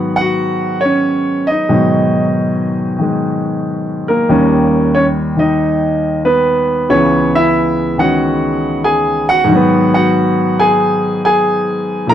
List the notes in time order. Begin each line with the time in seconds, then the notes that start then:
Already playing: G#2 D#3 F#3 B3 F#4 F#5
0.16 F#5
0.21 F#4
0.81 C#5
0.85 C#4
1.47 D#4 D#5
1.69 G#2 B2 D#3 F#3
2.99 D#3 G#3
4.08 A#3 A#4
4.29 D#2 D#3 G3 C#4
4.95 C#4 C#5
5.37 D#3 D#4 D#5
6.25 B3 B4
6.89 C#2 C#3 E3 B3 C#4 C#5
7.35 E4 E5
7.98 D#3 G#3 C#4 F#4 F#5
8.84 G#4 G#5
9.29 F#4 F#5
9.44 G#2 D#3
9.52 F#3 B3
9.94 F#4 F#5
10.59 G#4 G#5
11.25 G#4 G#5
12.07 A#2 E3 G#3 A#4 A#5